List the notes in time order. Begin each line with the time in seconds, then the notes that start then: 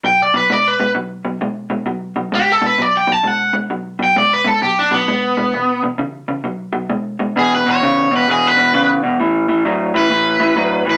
0.04 B2 F#3 G5
0.22 D5
0.34 B2 F#3 B4
0.50 B2 G#3 D5
0.68 B4
0.80 B2 G#3
0.95 B2 F#3
1.25 B2 F#3
1.41 B2 G#3
1.70 B2 G#3
1.86 B2 F#3
2.16 B2 F#3
2.32 B2 G#3 G4
2.52 A4
2.62 B2 G#3
2.66 B4
2.78 B2 F#3 D5
2.97 G5
3.07 B2 F#3
3.12 A5
3.23 B2 G#3 F#5
3.53 B2 G#3
3.70 B2 F#3
3.99 B2 F#3
4.04 G5
4.16 B2 G#3 D5
4.33 B4
4.45 B2 G#3 A4
4.62 B2 F#3 G4
4.79 D4
4.91 B2 F#3 B3
5.08 B2 G#3
5.37 B2 G#3
5.54 E2 B2
5.83 E2 B2
5.98 E2 C#3
6.28 E2 C#3
6.44 B2 F#3
6.73 B2 F#3
6.90 B2 G#3
7.19 B2 G#3
7.36 E2 B2 G#4
7.55 B4
7.66 E2 B2
7.71 C#5
7.83 E2 C#3
8.11 E2 B2
8.16 B4
8.28 E2 B2 G#4
8.47 B4
8.57 E2 B2
8.74 E2 C#3
9.03 E2 B2
9.20 A2 E3
9.48 A2 E3
9.65 A2 F#3
9.94 A2 E3 B4
10.10 A2 E3
10.40 A2 E3
10.56 A2 F#3
10.85 A2 E3
10.90 B4